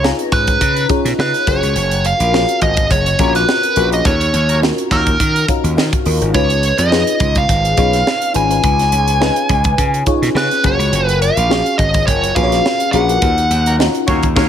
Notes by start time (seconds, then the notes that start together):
Already playing: C#2 C#4 D#4 F4 G#4 B4
0.03 C#4 D#4 F4 G#4 A#5, snare
0.19 closed hi-hat
0.32 G#2 B4, kick, closed hi-hat
0.47 kick, closed hi-hat
0.61 C#3, kick, closed hi-hat
0.77 closed hi-hat
0.89 C#4 D#4 F4 G#4 C#5, kick, closed hi-hat
1.05 B2, snare, closed hi-hat
1.18 C#3 C#4 D#4 F4 G#4 B4, snare
1.34 snare, closed hi-hat
1.47 F#1 C#4 F4 F#4 G#4 A#4 C#5, kick, closed hi-hat
1.63 C#2, closed hi-hat
1.75 F#1, closed hi-hat
1.91 closed hi-hat
2.05 F5, closed hi-hat
2.20 A#1, closed hi-hat
2.33 C#4 F4 F#4 G#4 A#4, snare
2.49 closed hi-hat
2.61 G#1 D#5, kick, closed hi-hat
2.77 kick, closed hi-hat
2.91 F#1 C#5, kick, closed hi-hat
3.06 closed hi-hat
3.19 A#1 C#4 F4 F#4 G#4 A#4, kick, closed hi-hat
3.35 B4, snare, closed hi-hat
3.49 snare
3.63 closed hi-hat
3.76 A#1 C#4 F4 F#4 G#4 A#4, closed hi-hat
3.91 C#4 F4 F#4 G#4 A#4 D#5, closed hi-hat
4.05 D#2 C#5, kick, closed hi-hat
4.21 closed hi-hat
4.34 D#2, closed hi-hat
4.49 F#3 A#3 D#4 A#4, closed hi-hat
4.62 C#4 D#4 F4 F#4 A#4, snare
4.78 closed hi-hat
4.91 D#2 F#3 A#3 D#4 A#4, kick, closed hi-hat
5.06 kick, closed hi-hat
5.20 D#3, kick, closed hi-hat
5.36 closed hi-hat
5.48 C#4 D#4 F4 F#4 A#4, kick, closed hi-hat
5.64 D#2, closed hi-hat
5.77 D#3 A#4 F5, snare
5.93 kick, closed hi-hat
6.06 D#2 A#4 D#5, open hi-hat
6.21 G#1 G#4 C#5, closed hi-hat
6.34 C#2 C#4 D#4 F4 G#4 B4 C#5, kick, closed hi-hat
6.50 closed hi-hat
6.63 closed hi-hat
6.78 F2 D#5, closed hi-hat
6.90 C#4 D#4 F4 G#4 B4, snare
7.07 closed hi-hat
7.20 C#2, kick, closed hi-hat
7.35 F5, kick, closed hi-hat
7.49 G#1, kick, closed hi-hat
7.65 closed hi-hat
7.77 B1 C#4 D#4 F4 G#4 C#5, kick, closed hi-hat
7.93 snare, closed hi-hat
8.07 snare
8.22 closed hi-hat
8.34 G#1 C#4 D#4 F4 G#4 B4 G#5, closed hi-hat
8.50 C#4 D#4 F4 G#4 B4, closed hi-hat
8.63 C#2, kick, closed hi-hat
8.79 snare, closed hi-hat
8.92 C#2, closed hi-hat
9.08 closed hi-hat
9.20 C#4 D#4 F4 G#4 B4, snare
9.36 closed hi-hat
9.49 C#2, kick, closed hi-hat
9.64 kick, closed hi-hat
9.78 C#3, kick, closed hi-hat
9.94 closed hi-hat
10.06 C#4 D#4 F4 G#4 C#5, kick, closed hi-hat
10.22 B2, snare, closed hi-hat
10.35 C#3 C#4 D#4 F4 G#4 B4, snare
10.51 snare, closed hi-hat
10.63 F#1 C#4 F4 F#4 G#4 A#4 C#5, kick, closed hi-hat
10.79 C#2, closed hi-hat
10.92 F#1, closed hi-hat
11.07 B4, closed hi-hat
11.22 F5, closed hi-hat
11.37 A#1, closed hi-hat
11.49 C#4 F4 F#4 G#4 C#5, snare
11.66 closed hi-hat
11.78 G#1 D#5, kick, closed hi-hat
11.94 kick, closed hi-hat
12.07 F#1 C#5, kick, closed hi-hat
12.24 closed hi-hat
12.35 A#1 C#4 F4 F#4 G#4 B4 F5, kick, closed hi-hat
12.43 C#5
12.52 snare, closed hi-hat
12.66 snare
12.80 closed hi-hat
12.92 A#1 C#4 F4 F#4 G#4 A#4 F#5, closed hi-hat
13.08 C#4 F4 F#4 G#4 A#4, closed hi-hat
13.22 D#2, kick, closed hi-hat
13.38 closed hi-hat
13.50 D#2, closed hi-hat
13.66 F#3 A#3 D#4 A#4, closed hi-hat
13.79 C#4 D#4 F4 F#4 A#4, snare
13.95 closed hi-hat
14.07 D#2 A#3 C#4 F#4 C#5, kick, closed hi-hat
14.23 kick, closed hi-hat
14.35 D#2 A#3 C#4 D#4 F#4 A#4 C#5, kick, snare, crash